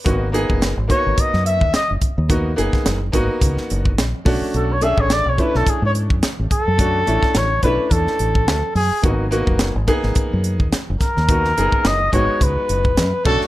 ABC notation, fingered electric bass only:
X:1
M:4/4
L:1/16
Q:"Swing 16ths" 1/4=107
K:G#m
V:1 name="Fingered electric bass" clef=bass
G,,,3 F,,,2 G,,, z G,,, z F,,2 D,, z F,,, z D,,- | D,,2 F,,, z F,,,2 G,,, z C,, z F,,,2 A,,, z B,,, z | B,,,3 =A,,,2 B,,, z B,,, z G,,2 F,, z A,,, z F,,- | F,,2 =A,,, z A,,,2 B,,, z E,, z A,,,2 =D,, z F,, z |
G,,,3 F,,,2 G,,, z G,,, z F,,2 D,, z F,,, z D,,- | D,,2 F,,, z F,,,2 G,,, z C,, z F,,,2 F,, z B,,, z |]